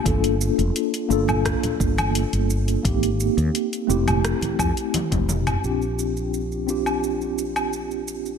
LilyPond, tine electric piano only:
\new Staff \with { instrumentName = "Tine electric piano" } { \time 4/4 \key bes \lydian \tempo 4 = 86 <bes d' f' a'>4. <bes d' f' a'>2~ <bes d' f' a'>8 | <bes c' ees' g'>4. <a c' e' g'>2~ <a c' e' g'>8 | <c' d' f' g'>4. <c' d' f' g'>2~ <c' d' f' g'>8 | }